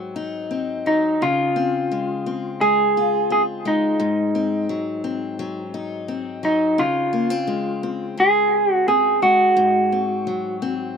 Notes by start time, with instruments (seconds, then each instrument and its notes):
Already playing: steel-string acoustic guitar G#2 F#3 C4, clean electric guitar F#4
0.16 steel-string acoustic guitar D#4
0.51 steel-string acoustic guitar C4
0.86 steel-string acoustic guitar F#3, clean electric guitar D#4
1.22 steel-string acoustic guitar C#3, clean electric guitar F4
1.56 steel-string acoustic guitar C4
1.91 steel-string acoustic guitar G#3
2.26 steel-string acoustic guitar C4
2.61 steel-string acoustic guitar G#3, clean electric guitar G#4
2.97 steel-string acoustic guitar F4
3.30 steel-string acoustic guitar C4, clean electric guitar G#4
3.65 steel-string acoustic guitar G#3, clean electric guitar D#4
4.00 steel-string acoustic guitar G#2
4.35 steel-string acoustic guitar C4
4.69 steel-string acoustic guitar F#3
5.04 steel-string acoustic guitar C4
5.39 steel-string acoustic guitar F#3
5.74 steel-string acoustic guitar D#4
6.08 steel-string acoustic guitar C4
6.43 steel-string acoustic guitar F#3, clean electric guitar D#4
6.78 steel-string acoustic guitar C#3, clean electric guitar F4
7.13 steel-string acoustic guitar A#3
7.30 steel-string acoustic guitar C4
7.47 steel-string acoustic guitar G#3
7.83 steel-string acoustic guitar C4
8.17 steel-string acoustic guitar G#3, clean electric guitar G#4
8.73 clean electric guitar F#4
8.88 steel-string acoustic guitar C4, clean electric guitar G#4
9.22 steel-string acoustic guitar G#3, clean electric guitar F#4
9.57 steel-string acoustic guitar G#2
9.92 steel-string acoustic guitar C4
10.27 steel-string acoustic guitar F#3
10.62 steel-string acoustic guitar C4